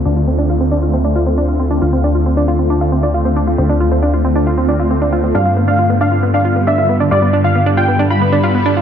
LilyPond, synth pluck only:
\new Staff \with { instrumentName = "Synth pluck" } { \time 4/4 \key d \dorian \tempo 4 = 136 d'16 f'16 c'16 d'16 f'16 c'16 d'16 f'16 c'16 d'16 f'16 c'16 d'16 f'16 c'16 d'16 | f'16 c'16 d'16 f'16 c'16 d'16 f'16 c'16 d'16 f'16 c'16 d'16 f'16 c'16 d'16 f'16 | c'16 d'16 f'16 c'16 d'16 f'16 c'16 d'16 f'16 c'16 d'16 f'16 c'16 d'16 f'16 c'16 | d'16 f'16 b16 d'16 f'16 b16 d'16 f'16 b16 d'16 f'16 b16 d'16 f'16 b16 d'16 |
f'16 b16 d'16 f'16 b16 d'16 f'16 b16 d'16 f'16 b16 d'16 f'16 b16 d'16 f'16 | }